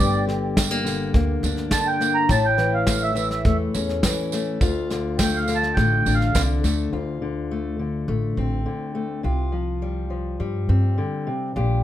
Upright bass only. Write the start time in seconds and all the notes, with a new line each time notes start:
0.00 G1
1.14 D2
1.43 D2
2.30 A1
3.45 E2
3.75 E2
4.61 D2
5.77 A1
6.06 A1
6.35 C2
6.64 D2
6.93 D2
8.08 A1
8.37 A1
9.24 C2
10.40 G2
10.69 G2
11.56 A#1